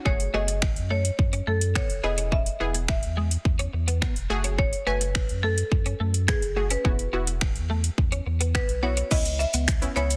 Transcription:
0.05 0.29 F#1 loud
0.05 0.29 A3 medium
0.05 0.17 C#4 medium
0.05 0.29 F#4 medium
0.05 0.29 G#4 medium
0.05 0.35 C#5 medium
0.05 kick loud
0.20 closed hi-hat medium
0.34 0.78 F#1 medium
0.34 1.26 A3 medium
0.34 0.46 B3 medium
0.34 1.26 F#4 medium
0.34 1.26 G#4 medium
0.34 0.92 D#5 medium
0.48 muted clean electric guitar stroke soft
0.48 closed hi-hat medium
0.62 finger snap loud
0.62 kick loud
0.76 1.11 F#2 medium
0.76 closed hi-hat soft
0.90 1.02 A3 medium
0.90 1.49 C#5 medium
1.05 closed hi-hat medium
1.19 1.42 F#2 loud
1.19 muted clean electric guitar stroke soft
1.19 kick loud
1.33 1.45 C#4 medium
1.33 closed hi-hat soft
1.47 1.82 F#2 medium
1.47 1.59 A3 medium
1.47 1.76 A4 medium
1.61 closed hi-hat medium
1.75 1.87 B3 medium
1.75 2.05 C#5 medium
1.75 finger snap loud
1.75 kick loud
1.89 2.01 F#1 medium
1.89 closed hi-hat medium
2.03 2.49 E1 loud
2.03 2.50 B3 medium
2.03 2.50 E4 medium
2.03 2.50 G#4 medium
2.03 2.30 D#5 loud
2.03 muted clean electric guitar stroke soft
2.18 2.30 C#4 medium
2.18 closed hi-hat medium
2.32 2.44 C#4 medium
2.32 2.85 E5 loud
2.32 kick loud
2.46 closed hi-hat medium
2.60 3.04 E1 medium
2.60 3.53 B3 medium
2.60 2.72 B3 medium
2.60 3.53 E4 medium
2.60 3.53 G#4 medium
2.74 muted clean electric guitar stroke soft
2.74 closed hi-hat medium
2.88 4.26 E5 medium
2.88 finger snap loud
2.88 kick loud
3.03 3.37 E2 medium
3.03 closed hi-hat soft
3.17 3.29 G#3 medium
3.31 closed hi-hat medium
3.45 3.68 E2 loud
3.45 kick loud
3.59 3.71 C#4 medium
3.59 closed hi-hat soft
3.73 4.08 E2 medium
3.73 muted clean electric guitar stroke soft
3.88 3.99 B3 medium
3.88 closed hi-hat medium
4.02 4.13 B3 medium
4.02 finger snap loud
4.02 kick loud
4.16 4.27 E1 medium
4.16 closed hi-hat medium
4.30 4.76 F#1 medium
4.30 4.76 A3 medium
4.30 4.76 F#4 medium
4.30 4.76 G#4 loud
4.30 muted clean electric guitar stroke soft
4.44 4.56 C#4 medium
4.44 closed hi-hat medium
4.58 4.70 C#4 medium
4.58 4.85 C#5 loud
4.58 kick loud
4.73 closed hi-hat medium
4.86 5.31 F#1 medium
4.86 5.79 A3 medium
4.86 4.98 B3 medium
4.86 5.79 F#4 medium
4.86 5.45 B4 loud
4.86 5.79 G#5 medium
5.01 muted clean electric guitar stroke soft
5.01 closed hi-hat medium
5.15 finger snap loud
5.15 kick loud
5.29 5.64 F#2 medium
5.29 closed hi-hat medium
5.43 5.55 A3 medium
5.43 6.24 A4 medium
5.58 closed hi-hat medium
5.72 5.95 F#2 loud
5.72 muted clean electric guitar stroke soft
5.72 kick loud
5.86 5.98 C#4 medium
5.86 closed hi-hat soft
6.00 6.34 F#2 loud
6.00 6.12 A3 medium
6.14 closed hi-hat medium
6.28 6.40 B3 medium
6.28 6.72 G#4 medium
6.28 finger snap loud
6.28 kick loud
6.42 6.77 F#1 medium
6.42 closed hi-hat medium
6.56 6.79 A3 medium
6.56 6.80 F#4 medium
6.56 6.80 G#4 medium
6.56 muted clean electric guitar stroke soft
6.70 6.82 C#4 medium
6.70 7.52 B4 medium
6.70 closed hi-hat medium
6.84 7.08 E1 loud
6.84 7.08 B3 medium
6.84 6.97 C#4 medium
6.84 7.08 E4 medium
6.84 7.08 F#4 medium
6.84 kick loud
6.99 closed hi-hat medium
7.13 7.57 E1 medium
7.13 8.05 B3 medium
7.13 7.25 B3 medium
7.13 8.06 E4 medium
7.13 8.06 F#4 medium
7.27 muted clean electric guitar stroke soft
7.27 closed hi-hat medium
7.41 finger snap loud
7.41 kick loud
7.56 7.90 E2 medium
7.56 closed hi-hat medium
7.70 7.82 A3 medium
7.84 closed hi-hat medium
7.98 8.21 E2 loud
7.98 kick loud
8.12 8.24 C#4 medium
8.12 closed hi-hat soft
8.26 8.61 E2 loud
8.26 muted clean electric guitar stroke soft
8.41 8.52 B3 medium
8.41 closed hi-hat medium
8.55 8.66 B3 medium
8.55 8.67 B4 medium
8.55 finger snap loud
8.55 kick loud
8.69 9.03 B1 medium
8.69 closed hi-hat medium
8.83 9.06 B3 medium
8.83 9.06 E4 medium
8.83 9.06 F#4 medium
8.83 9.12 C#5 loud
8.83 muted clean electric guitar stroke soft
8.97 9.09 C#4 medium
8.97 closed hi-hat medium
9.11 9.46 C#2 loud
9.11 9.69 B3 medium
9.11 9.69 C#4 medium
9.11 9.23 C#4 medium
9.11 9.69 E4 medium
9.11 9.40 D#5 loud
9.11 kick loud
9.11 crash medium
9.11 shaker medium
9.25 closed hi-hat medium
9.25 shaker medium
9.39 9.98 E5 loud
9.39 muted clean electric guitar stroke soft
9.39 shaker medium
9.54 9.88 C#2 medium
9.54 9.66 B3 medium
9.54 closed hi-hat medium
9.54 shaker medium
9.68 finger snap loud
9.68 kick loud
9.68 shaker medium
9.82 9.93 B3 medium
9.82 9.94 C#4 medium
9.82 9.94 E4 medium
9.82 closed hi-hat soft
9.82 shaker medium
9.96 10.17 C#2 medium
9.96 10.17 B3 medium
9.96 10.17 C#4 medium
9.96 10.08 C#4 medium
9.96 10.17 E4 medium
9.96 10.17 C#5 medium
9.96 shaker medium
10.10 closed hi-hat medium
10.10 shaker medium

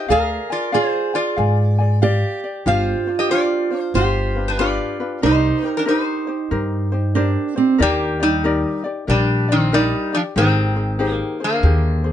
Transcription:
0.00 0.11 D#5 medium
0.08 0.36 D2 medium
0.08 0.51 G#4 medium
0.08 0.49 G#4 medium
0.08 0.74 A#4 loud
0.08 0.50 D5 medium
0.08 0.50 F5 medium
0.08 0.52 F5 loud
0.08 0.49 G#5 medium
0.50 0.73 F4 medium
0.50 0.71 G#4 soft
0.50 0.72 D5 soft
0.50 0.76 D5 medium
0.50 0.72 G#5 soft
0.72 1.12 F4 medium
0.72 1.14 G#4 medium
0.72 2.02 G#4 medium
0.72 1.17 C5 medium
0.72 1.13 D5 medium
0.72 1.14 F5 medium
0.72 1.13 G#5 medium
1.14 2.39 F4 medium
1.14 1.36 G#4 soft
1.14 1.37 D5 soft
1.14 2.40 D5 medium
1.14 1.38 G#5 medium
1.37 2.21 G#2 loud
1.37 1.79 G#4 medium
1.37 1.79 D5 medium
1.37 1.78 F5 medium
1.37 1.77 G#5 medium
1.79 2.03 G#4 soft
1.79 2.02 D5 soft
1.79 2.02 G#5 soft
2.02 2.69 G4 loud
2.02 2.43 D5 loud
2.02 2.43 F5 medium
2.44 2.65 D5 medium
2.66 2.93 G1 medium
2.66 3.07 D4 medium
2.66 3.07 F4 medium
2.66 3.99 F4 medium
2.66 3.07 G4 medium
2.66 3.06 C5 medium
2.66 3.17 C5 medium
2.66 3.18 F5 loud
3.07 3.30 D4 soft
3.07 3.30 F4 soft
3.07 3.30 C5 soft
3.19 3.30 G4 medium
3.19 3.31 D#5 medium
3.30 3.72 D4 medium
3.30 3.71 F4 medium
3.30 3.92 F4 medium
3.30 3.71 G4 medium
3.30 3.69 C5 medium
3.30 3.81 D5 medium
3.70 3.95 D4 soft
3.70 3.95 F4 soft
3.70 3.94 C5 soft
3.81 3.95 C5 medium
3.94 4.78 G1 loud
3.94 4.36 D4 medium
3.94 4.45 F4 medium
3.94 4.35 F4 medium
3.94 4.36 G4 medium
3.94 5.19 G4 medium
3.94 4.49 C5 medium
4.35 4.59 D4 soft
4.35 4.59 F4 soft
4.35 4.59 B4 soft
4.48 4.59 D4 medium
4.48 4.60 B4 medium
4.59 5.01 D4 medium
4.59 5.00 F4 medium
4.59 5.20 F4 medium
4.59 5.00 G4 medium
4.59 4.99 B4 medium
4.59 5.23 D5 medium
5.00 5.23 D4 soft
5.00 5.23 F4 soft
5.00 5.23 B4 medium
5.22 5.50 C2 medium
5.22 5.63 D#4 medium
5.22 7.21 D#4 medium
5.22 5.73 D#4 medium
5.22 5.63 G4 medium
5.22 5.64 A#4 medium
5.22 5.77 C5 medium
5.22 5.62 C5 medium
5.63 5.85 D#4 soft
5.63 5.86 G4 soft
5.63 5.86 C5 soft
5.77 5.83 D4 medium
5.77 5.82 A#4 medium
5.85 6.28 D#4 medium
5.85 6.27 G4 medium
5.85 6.27 A#4 medium
5.85 6.26 C5 medium
5.85 7.57 C5 medium
5.90 7.54 D#4 medium
6.27 6.50 D#4 soft
6.27 6.51 G4 soft
6.27 6.51 C5 soft
6.51 7.35 G2 medium
6.51 6.92 D#4 medium
6.51 6.92 G4 medium
6.51 6.92 A#4 medium
6.51 6.91 C5 medium
6.92 7.16 D#4 soft
6.92 7.15 G4 soft
6.92 7.15 C5 medium
7.15 7.57 D4 medium
7.15 7.56 G4 medium
7.15 7.56 A#4 medium
7.15 7.55 C5 medium
7.56 7.79 C4 medium
7.56 7.78 D#4 soft
7.56 7.79 G4 medium
7.56 7.79 C5 medium
7.78 8.63 D#2 medium
7.78 8.20 D#4 medium
7.78 8.20 G4 medium
7.78 8.23 G4 loud
7.78 8.20 A#4 medium
7.78 8.19 D5 medium
7.83 8.20 A#3 medium
8.20 8.82 G3 medium
8.20 8.44 D#4 soft
8.20 8.82 D#4 medium
8.20 8.44 G4 soft
8.20 8.43 D5 soft
8.44 8.84 D#4 medium
8.44 8.84 G4 medium
8.44 8.85 A#4 medium
8.44 8.83 D5 medium
8.84 9.08 D#4 soft
8.84 9.07 G4 soft
8.84 9.07 D5 medium
9.07 9.91 A#1 loud
9.07 9.47 G3 medium
9.07 9.51 D4 loud
9.07 9.49 G4 medium
9.07 9.48 A#4 medium
9.07 9.47 D5 medium
9.48 9.74 C4 medium
9.48 9.72 D#4 soft
9.48 9.72 G4 medium
9.48 9.72 D5 medium
9.53 9.72 D#3 medium
9.72 10.11 G3 medium
9.72 10.13 D#4 medium
9.72 10.15 D#4 loud
9.72 10.12 G4 medium
9.72 10.13 A#4 medium
9.72 10.12 D5 medium
10.13 10.21 F3 medium
10.13 10.20 D4 medium
10.13 10.35 G4 medium
10.13 10.36 D5 medium
10.36 11.19 G#1 medium
10.36 11.38 D#3 medium
10.36 11.13 C4 loud
10.36 10.77 D#4 medium
10.36 10.77 G4 medium
10.36 10.76 G#4 medium
10.36 10.75 C5 medium
10.76 10.98 D#4 soft
10.76 10.98 G#4 soft
10.76 10.99 C5 medium
10.99 11.40 D#4 medium
10.99 11.40 G4 medium
10.99 11.40 G#4 medium
10.99 11.39 C5 medium
11.13 11.44 A#3 loud
11.40 11.64 G#4 soft
11.40 11.63 C5 medium
11.44 12.12 D3 medium
11.44 12.12 A#3 medium
11.63 12.12 D#2 loud
11.63 12.04 G4 medium
11.63 12.04 G#4 medium
11.63 12.03 C5 medium
12.04 12.12 G#4 soft
12.04 12.12 C5 medium

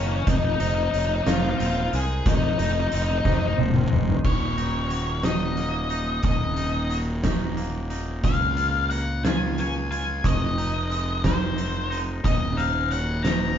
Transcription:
0.00 0.22 F#1 medium
0.00 0.27 D#3 medium
0.00 0.27 A#3 medium
0.00 0.30 D#4 medium
0.00 0.26 D#5 medium
0.08 0.16 C#4 medium
0.16 0.24 C#4 medium
0.27 0.54 F1 medium
0.27 1.93 F2 medium
0.27 0.37 D#4 medium
0.27 0.60 D#5 medium
0.27 kick loud
0.27 closed hi-hat medium
0.37 0.44 D#4 medium
0.44 0.52 D#4 medium
0.53 0.60 D#4 medium
0.60 0.88 F1 medium
0.60 1.26 D#4 medium
0.60 0.68 D#4 medium
0.60 0.93 C5 medium
0.60 closed hi-hat medium
0.68 0.75 D#4 medium
0.75 0.83 D#4 medium
0.84 0.91 D#4 medium
0.91 1.21 F1 medium
0.91 0.99 D#4 medium
0.91 1.26 C#5 medium
0.91 closed hi-hat medium
0.99 1.06 D#4 medium
1.07 1.14 D#4 medium
1.15 1.22 D#4 medium
1.23 1.54 F1 medium
1.23 1.27 D#4 medium
1.23 2.58 D#4 medium
1.23 1.34 F4 loud
1.23 1.92 C5 medium
1.23 snare medium
1.23 closed hi-hat medium
1.34 1.42 F4 medium
1.42 1.50 F4 medium
1.50 1.57 F4 medium
1.58 1.87 D#1 medium
1.58 2.91 C4 medium
1.58 1.66 F4 medium
1.58 closed hi-hat medium
1.67 1.74 F4 medium
1.74 1.81 F4 medium
1.81 1.89 F4 medium
1.92 2.20 C2 medium
1.92 3.58 G#3 medium
1.92 2.28 G#4 medium
1.92 2.59 A#4 medium
1.92 closed hi-hat medium
2.26 2.53 F1 medium
2.26 3.92 F2 medium
2.26 2.35 D#4 loud
2.26 kick loud
2.26 closed hi-hat medium
2.35 2.43 D#4 medium
2.44 2.50 D#4 medium
2.51 2.58 D#4 medium
2.59 2.87 F1 medium
2.59 2.65 D#4 medium
2.59 3.24 D#4 medium
2.59 closed hi-hat medium
2.65 2.72 D#4 medium
2.73 2.80 D#4 medium
2.80 2.88 D#4 medium
2.88 2.95 D#4 medium
2.88 closed hi-hat medium
2.92 3.20 F1 medium
2.92 3.56 C4 medium
2.92 3.03 D#4 medium
3.03 3.11 D#4 medium
3.12 3.18 D#4 medium
3.18 3.25 D#4 medium
3.25 3.53 F1 medium
3.25 4.25 D#4 medium
3.25 3.33 D#4 medium
3.25 3.91 C5 medium
3.25 kick medium
3.25 snare medium
3.34 3.39 D#4 medium
3.40 3.47 D#4 medium
3.48 3.55 D#4 medium
3.57 3.86 D#1 medium
3.57 4.24 C4 medium
3.57 high tom medium
3.74 mid tom medium
3.92 4.19 F1 medium
3.92 4.25 G#3 medium
3.92 4.25 D#5 medium
3.92 mid tom medium
4.08 floor tom medium
4.24 6.20 D#1 medium
4.24 5.90 D#2 medium
4.24 5.24 C#5 medium
4.24 kick medium
4.24 crash medium
4.57 5.22 D#4 medium
4.57 closed hi-hat medium
4.90 6.57 F#3 medium
4.90 closed hi-hat medium
5.23 5.89 D#4 medium
5.23 6.20 D#5 medium
5.23 snare medium
5.23 closed hi-hat medium
5.57 7.57 A#3 medium
5.57 closed hi-hat medium
5.90 6.56 D#4 medium
5.90 closed hi-hat soft
6.23 8.20 D#1 medium
6.23 7.91 D#2 medium
6.23 6.95 D#5 medium
6.23 kick loud
6.23 closed hi-hat medium
6.56 7.23 D#4 medium
6.56 closed hi-hat medium
6.90 8.24 F#3 medium
6.90 closed hi-hat soft
7.24 7.89 D#4 medium
7.24 kick medium
7.24 snare medium
7.24 closed hi-hat medium
7.57 8.24 A#3 medium
7.57 closed hi-hat soft
7.90 8.24 D#4 medium
7.90 closed hi-hat medium
8.23 10.20 C#2 medium
8.23 9.91 A#2 medium
8.23 8.87 F5 medium
8.23 kick medium
8.23 closed hi-hat medium
8.57 9.23 F4 medium
8.57 closed hi-hat medium
8.90 10.24 A#3 medium
8.90 9.24 F#5 medium
8.90 closed hi-hat soft
9.25 9.89 F4 medium
9.25 9.59 G#5 medium
9.25 snare loud
9.25 closed hi-hat medium
9.58 10.25 C#4 medium
9.58 9.90 G#5 medium
9.58 closed hi-hat medium
9.91 10.24 F4 medium
9.91 10.26 G#5 medium
9.91 closed hi-hat medium
10.24 12.20 F1 medium
10.24 11.91 F2 medium
10.24 11.25 D#5 medium
10.24 kick medium
10.24 closed hi-hat medium
10.58 11.23 D#4 medium
10.58 closed hi-hat medium
10.91 12.24 G#3 medium
10.91 closed hi-hat soft
11.24 11.90 D#4 medium
11.24 11.96 C5 medium
11.24 kick medium
11.24 snare medium
11.24 closed hi-hat medium
11.57 12.24 C4 medium
11.57 closed hi-hat medium
11.90 12.56 D#4 medium
11.90 closed hi-hat soft
12.23 13.58 D#1 medium
12.23 13.58 D#2 medium
12.23 12.58 D#5 medium
12.23 12.59 D#5 medium
12.23 kick medium
12.23 closed hi-hat medium
12.57 13.23 D#4 medium
12.57 12.91 C5 medium
12.57 12.91 F5 medium
12.57 closed hi-hat medium
12.91 13.58 F#3 medium
12.91 13.24 C#5 medium
12.91 13.26 F#5 medium
12.91 closed hi-hat medium
13.23 13.58 D#4 medium
13.23 13.58 C5 medium
13.23 13.58 A#5 medium
13.23 snare medium
13.23 closed hi-hat medium

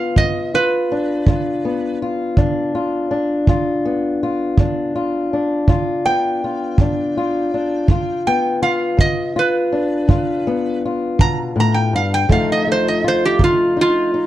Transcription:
0.00 1.65 B3 medium
0.00 0.54 F4 medium
0.00 0.17 F5 medium
0.16 0.84 G2 medium
0.16 0.53 D#5 medium
0.16 kick medium
0.54 1.28 F4 medium
0.54 1.98 B4 medium
0.92 2.37 D4 medium
1.27 1.94 G2 medium
1.27 2.02 F4 medium
1.27 kick medium
1.65 3.52 B3 medium
2.02 2.74 F4 medium
2.37 3.04 G2 medium
2.37 3.10 D4 medium
2.37 kick medium
2.75 3.49 F4 medium
3.11 4.59 D4 medium
3.47 4.15 G2 medium
3.47 4.23 F4 medium
3.47 kick medium
3.85 6.04 B3 medium
4.23 4.95 F4 medium
4.58 5.25 G2 medium
4.58 5.33 D4 medium
4.58 kick medium
4.96 5.69 F4 medium
5.33 6.80 D4 medium
5.68 6.35 G2 medium
5.68 6.44 F4 medium
5.68 kick medium
6.06 7.85 B3 medium
6.06 8.22 G5 medium
6.44 7.17 F4 medium
6.78 7.46 G2 medium
6.78 7.53 D4 medium
6.78 kick medium
7.17 7.90 F4 medium
7.54 7.86 D4 medium
7.88 8.56 G2 medium
7.88 8.62 F4 medium
7.88 kick medium
8.27 10.46 B3 medium
8.27 8.62 G5 medium
8.62 9.36 F4 medium
8.62 8.98 F5 medium
8.97 9.65 G2 medium
8.97 9.36 D#5 medium
8.97 kick medium
9.36 10.09 F4 medium
9.36 10.81 B4 medium
9.72 12.25 D4 medium
10.08 10.75 G2 medium
10.08 10.83 F4 medium
10.08 kick medium
10.47 12.26 B3 medium
10.85 12.27 F4 medium
11.19 11.55 B2 medium
11.19 11.38 A#5 medium
11.19 kick medium
11.56 11.93 A2 medium
11.60 11.76 A#5 medium
11.74 11.92 G5 medium
11.93 12.28 G2 medium
11.93 12.12 F5 medium
12.14 12.31 G5 medium
12.29 12.95 F2 medium
12.29 14.27 F3 medium
12.29 12.66 A3 medium
12.29 13.38 D#4 medium
12.29 13.03 F4 medium
12.29 12.49 F5 medium
12.29 kick medium
12.52 12.68 D#5 medium
12.67 14.27 A3 medium
12.72 12.87 C5 medium
12.88 13.04 D#5 medium
13.04 14.27 F4 medium
13.04 13.23 C5 medium
13.25 13.41 G4 medium
13.39 14.05 F2 medium
13.39 13.76 D#4 medium
13.39 kick medium
13.44 13.77 F4 medium
13.77 14.13 D#4 medium
13.81 14.27 F4 medium
14.14 14.27 D#4 medium

